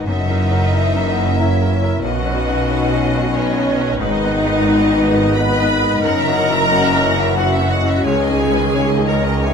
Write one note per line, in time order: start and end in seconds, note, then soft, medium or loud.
0.06 2.03 F#1 medium
0.06 2.05 F#2 medium
0.06 0.28 F#2 medium
0.06 2.04 F#2 medium
0.06 1.99 E3 medium
0.06 1.99 A#3 medium
0.06 1.35 D#4 loud
0.06 1.35 D#5 medium
0.06 1.99 E5 medium
0.06 0.72 F#5 medium
0.22 2.05 C#3 soft
0.29 0.49 C#4 soft
0.29 0.49 E4 soft
0.29 0.49 A#4 soft
0.40 2.34 C#4 soft
0.51 0.70 C#4 soft
0.51 0.70 E4 soft
0.51 0.71 A#4 medium
0.57 1.85 E4 soft
0.72 0.92 C#4 soft
0.72 0.92 E4 soft
0.72 1.68 A#4 medium
0.72 0.92 A#4 soft
0.72 1.05 E5 medium
0.88 1.52 C#5 medium
0.95 1.14 C#4 soft
0.95 1.14 E4 soft
0.95 1.15 A#4 soft
1.04 1.38 D#5 medium
1.04 2.05 F#5 medium
1.16 1.35 C#4 soft
1.16 1.36 E4 soft
1.16 1.36 A#4 soft
1.21 2.05 A#5 medium
1.36 1.58 C#4 soft
1.36 2.03 E4 medium
1.36 1.58 E4 soft
1.36 1.58 A#4 medium
1.36 2.03 C#5 medium
1.36 2.05 E5 medium
1.36 2.02 E5 medium
1.53 2.84 C#5 medium
1.61 1.80 C#4 soft
1.61 1.80 E4 soft
1.61 1.80 A#4 soft
1.69 2.05 A#4 medium
1.82 2.01 C#4 soft
1.82 2.02 E4 soft
1.82 2.05 E4 medium
1.82 2.02 A#4 medium
2.02 3.96 B1 medium
2.02 2.25 B1 medium
2.02 4.02 B2 medium
2.02 3.97 B2 medium
2.02 6.00 D#3 medium
2.02 3.84 C#4 medium
2.02 3.32 F#4 loud
2.02 2.35 B4 medium
2.02 3.97 D#5 medium
2.02 3.31 F#5 medium
2.19 4.03 F#3 medium
2.25 2.44 C#4 medium
2.25 2.45 D#4 medium
2.25 2.45 B4 medium
2.36 4.03 C#4 medium
2.36 3.35 D#5 medium
2.48 2.67 C#4 medium
2.48 2.67 D#4 soft
2.48 3.84 D#4 medium
2.48 2.67 B4 medium
2.68 2.89 C#4 soft
2.68 2.89 D#4 soft
2.68 3.67 B4 medium
2.68 2.89 B4 medium
2.85 3.51 C#5 medium
2.92 3.11 C#4 soft
2.92 3.11 D#4 soft
2.92 3.11 B4 medium
3.00 3.33 D#5 medium
3.14 3.33 C#4 soft
3.14 3.33 D#4 soft
3.14 3.33 B4 medium
3.18 5.19 B5 medium
3.35 3.99 C#4 loud
3.35 3.55 C#4 medium
3.35 3.55 D#4 medium
3.35 3.55 B4 medium
3.35 4.00 C#5 medium
3.35 4.01 C#5 medium
3.35 5.00 D#5 medium
3.52 4.03 C#5 medium
3.58 3.77 C#4 soft
3.58 3.77 D#4 medium
3.58 3.77 B4 medium
3.80 3.99 C#4 medium
3.80 3.99 D#4 medium
3.80 3.99 B4 medium
3.85 4.48 D#4 medium
3.99 6.00 G#1 medium
3.99 6.07 G#2 medium
3.99 4.21 G#2 medium
3.99 6.01 G#2 medium
3.99 6.01 B3 medium
3.99 5.36 D#4 loud
3.99 4.14 B4 medium
3.99 4.32 B4 medium
3.99 5.34 D#5 loud
4.15 6.07 D#3 medium
4.15 4.32 D#5 medium
4.24 4.43 B3 medium
4.24 4.43 D#4 medium
4.24 4.43 B4 medium
4.31 5.86 B3 medium
4.31 4.48 B4 medium
4.31 4.65 D#5 medium
4.46 4.65 B3 medium
4.46 4.65 D#4 medium
4.46 4.82 D#4 medium
4.46 4.65 B4 medium
4.46 4.65 D#5 medium
4.65 4.87 B3 medium
4.65 4.88 D#4 medium
4.65 4.98 B4 medium
4.65 4.81 B4 medium
4.65 5.53 B4 medium
4.65 4.88 B4 medium
4.81 5.00 D#5 medium
4.91 5.12 B3 medium
4.91 5.12 D#4 medium
4.91 5.12 B4 medium
4.98 5.17 B4 medium
4.98 5.35 B4 medium
4.98 5.35 D#5 medium
5.14 5.35 B3 medium
5.14 5.35 D#4 medium
5.14 5.36 B4 medium
5.14 5.36 D#5 medium
5.20 6.07 B5 medium
5.35 5.58 B3 medium
5.35 5.58 D#4 medium
5.35 5.52 B4 medium
5.35 6.04 B4 loud
5.35 5.58 B4 medium
5.35 7.12 D#5 medium
5.35 6.07 D#5 medium
5.35 6.04 B5 loud
5.53 6.07 B4 medium
5.53 5.70 D#5 medium
5.61 5.81 B3 medium
5.61 5.81 D#4 medium
5.61 5.81 B4 medium
5.68 6.07 D#4 medium
5.68 5.86 B4 medium
5.83 6.03 B3 medium
5.83 6.02 D#4 medium
5.83 6.03 B4 medium
5.83 6.03 D#5 medium
5.87 6.07 B3 medium
6.01 8.05 F#1 medium
6.01 8.07 F#2 medium
6.01 8.05 F#2 medium
6.01 6.26 F#2 medium
6.01 8.01 E3 medium
6.01 9.54 C#4 medium
6.01 7.35 A#4 loud
6.01 6.18 F#5 medium
6.01 7.38 A#5 loud
6.19 8.03 C#3 medium
6.19 6.36 E5 medium
6.27 6.47 C#4 medium
6.27 6.47 E4 medium
6.27 6.47 F#4 medium
6.35 6.53 F#5 medium
6.49 6.69 C#4 medium
6.49 6.69 E4 medium
6.49 6.69 F#4 medium
6.49 6.69 E5 medium
6.54 7.85 E4 medium
6.68 6.91 C#4 medium
6.68 6.91 E4 medium
6.68 7.69 F#4 medium
6.68 6.92 F#4 medium
6.68 6.85 F#5 medium
6.86 7.52 C#5 medium
6.86 7.03 E5 medium
6.95 7.14 C#4 medium
6.95 7.14 E4 medium
6.95 7.15 F#4 medium
7.04 7.21 F#5 medium
7.16 7.36 C#4 medium
7.16 7.36 E4 medium
7.16 7.36 F#4 medium
7.16 7.37 E5 medium
7.20 8.07 F#5 medium
7.36 7.58 C#4 medium
7.36 7.58 E4 medium
7.36 8.05 F#4 loud
7.36 7.59 F#4 medium
7.36 7.71 E5 medium
7.36 7.53 F#5 medium
7.36 8.04 F#5 medium
7.53 8.90 C#5 medium
7.53 7.70 E5 medium
7.60 7.80 C#4 medium
7.60 7.80 E4 soft
7.60 7.81 F#4 medium
7.70 8.07 F#4 medium
7.70 8.04 D#5 medium
7.70 7.88 F#5 medium
7.83 8.03 C#4 medium
7.83 8.03 E4 soft
7.83 8.07 E4 medium
7.83 8.03 F#4 medium
7.88 8.05 E5 medium
8.04 9.54 C#2 medium
8.04 8.28 C#2 medium
8.04 9.54 C#3 medium
8.04 9.54 D#3 medium
8.04 9.09 G#4 loud
8.04 8.38 C#5 medium
8.04 8.21 C#5 medium
8.04 9.08 G#5 medium
8.21 9.54 G#3 medium
8.21 8.39 D#5 medium
8.29 8.49 C#4 medium
8.29 8.49 D#4 medium
8.29 8.50 G#4 medium
8.38 9.54 C#4 medium
8.38 8.74 B4 medium
8.38 8.56 C#5 medium
8.52 8.72 C#4 medium
8.52 8.72 D#4 medium
8.52 8.72 G#4 medium
8.56 9.54 D#3 medium
8.56 8.74 D#5 medium
8.73 8.96 C#4 soft
8.73 8.96 D#4 medium
8.73 9.54 G#4 medium
8.73 8.96 G#4 medium
8.73 8.90 C#5 medium
8.73 9.09 C#5 medium
8.89 9.54 C#5 medium
8.89 9.08 D#5 medium
8.99 9.19 C#4 soft
8.99 9.20 D#4 soft
8.99 9.20 G#4 medium
9.07 9.45 A#4 medium
9.07 9.26 C#5 medium
9.07 9.44 D#5 medium
9.07 9.44 A#5 medium
9.22 9.43 C#4 soft
9.22 9.43 D#4 soft
9.22 9.44 G#4 medium
9.22 9.44 D#5 medium
9.27 9.54 G#5 medium
9.42 9.54 C#4 soft
9.42 9.54 G#4 loud
9.42 9.54 C#5 medium
9.42 9.54 E5 medium
9.42 9.54 G#5 medium
9.46 9.54 D#4 soft
9.46 9.54 G#4 medium